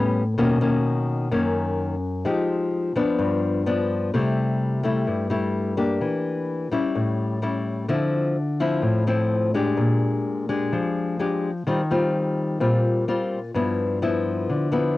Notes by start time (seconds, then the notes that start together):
Already playing: A2 G3 B3 C#4
0.38 B2 D#3 A#3 C#4
0.61 D#3 A#3 C#4
1.31 F#2 D#3 A#3 C#4
2.25 F3 G#3 D#4 G4
2.96 F3 B3 D4
3.19 G2
3.66 F3 B3 D4
4.14 C3 G3 A3 E4
4.83 G3 A3 E4
5.07 G2
5.30 G3 A3 E4
5.77 A#3 D4 G4
6.01 E3
6.72 G3 C#4 E4
6.95 A2
7.42 G3 C#4 E4
7.88 D3 F3 C4 E4
8.60 F3 C4 E4
8.82 A2
9.07 F3 C4 E4
9.54 G#3 D4 G4
9.77 A#2
10.49 G#3 D4 G4
10.72 F3
11.19 G#3 D4 G4
11.67 D#3 G3 C4 F4
11.91 G3 C4 F4
12.60 A#2 G3 C4 F4
13.08 G3 C4 F4
13.54 G2 F3 B3 E4
14.02 F3 B3 E4
14.49 D3
14.72 F3 B3 E4